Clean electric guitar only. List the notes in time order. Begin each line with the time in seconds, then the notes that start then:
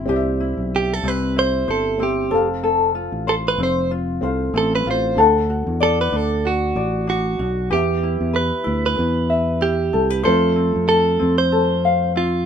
0.76 G4
0.94 A4
1.08 B4
1.39 C5
1.71 A4
2.03 G4
3.29 A4
3.48 B4
3.63 C5
4.58 A4
4.75 B4
4.91 C5
5.83 A4
6.01 B4
6.16 A4
6.47 F#4
7.10 F#4
7.73 G4
8.36 B4
8.86 B4
9.62 G4
10.25 A4
10.89 A4
11.38 C5
12.17 F4